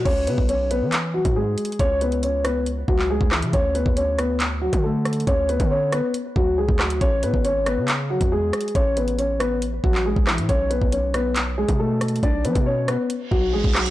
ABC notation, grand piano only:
X:1
M:4/4
L:1/8
Q:1/4=138
K:C#phr
V:1 name="Grand piano"
[Cc] [B,B] [Cc] [B,B] z [F,F] [G,G]2 | [Cc] [B,B] [Cc] [B,B] z [F,F] [G,G] [E,E] | [Cc] [B,B] [Cc] [B,B] z [F,F] [A,A]2 | [Cc] [B,B] [Cc] [B,B] z [F,F] [G,G] [F,F] |
[Cc] [B,B] [Cc] [B,B] z [F,F] [G,G]2 | [Cc] [B,B] [Cc] [B,B] z [F,F] [G,G] [E,E] | [Cc] [B,B] [Cc] [B,B] z [G,G] [A,A]2 | [Dd] [B,B] [Cc] [B,B] z [F,F] [G,G] [F,F] |]